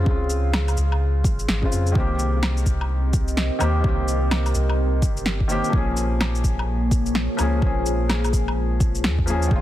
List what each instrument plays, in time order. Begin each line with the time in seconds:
Already playing: felt piano C#3 G#3 C4 F4, ambient pad G#4 C5 F5
0.03 sub bass C#2, felt piano C#3 G#3, kick
0.08 felt piano C4 F4
0.30 shaker
0.53 snare, low woodblock
0.68 low woodblock, shaker
0.77 sub bass C#2, shaker
0.92 low woodblock
1.24 sub bass G#1, kick, shaker
1.39 shaker
1.48 sub bass G#1, snare
1.62 felt piano C#3 G#3 C4 F4, kick
1.72 sub bass F2, shaker
1.87 shaker
1.92 sub bass C2, felt piano D#3 A#3, ambient pad C4, kick
1.97 felt piano C4 G4
2.16 ambient pad D#5, shaker
2.32 ambient pad G4
2.43 ambient pad A#4, snare, low woodblock
2.57 shaker
2.66 sub bass C2, kick, shaker
2.81 low woodblock
3.13 kick, shaker
3.28 shaker
3.37 snare
3.59 sub bass D#2, felt piano D#3 A#3 C4, low woodblock, shaker
3.63 felt piano G4
3.80 sub bass C2, felt piano D#3 A#3, kick
3.86 felt piano C4 G4
4.08 shaker
4.31 snare, low woodblock
4.46 low woodblock, shaker
4.55 sub bass C2, shaker
4.70 low woodblock
5.02 sub bass G1, kick, shaker
5.17 shaker
5.26 snare
5.40 kick
5.48 felt piano D#3 A#3 C4, shaker
5.52 felt piano G4
5.64 shaker
5.69 sub bass A#1, felt piano F3 A#3, ambient pad A#3, kick
5.75 felt piano C#4 G#4
5.90 ambient pad C#5
5.97 ambient pad F4, shaker
6.12 ambient pad G#4
6.21 snare, low woodblock
6.35 shaker
6.44 sub bass A#1, kick, shaker
6.59 low woodblock
6.91 kick, shaker
7.06 shaker
7.15 snare
7.37 sub bass C#2, felt piano F3 A#3 C#4, low woodblock, shaker
7.41 felt piano G#4
7.58 sub bass A#1, felt piano F3 A#3, kick
7.64 felt piano C#4 G#4
7.86 shaker
8.10 snare, low woodblock
8.25 low woodblock, shaker
8.33 sub bass A#1, kick, shaker
8.48 low woodblock
8.80 kick, shaker
8.95 shaker
9.04 sub bass D#2, snare
9.19 kick
9.26 felt piano F3 A#3 C#4, shaker
9.30 felt piano G#4
9.42 shaker
9.47 sub bass F1, felt piano D#3 G#3, kick
9.53 felt piano C4 F4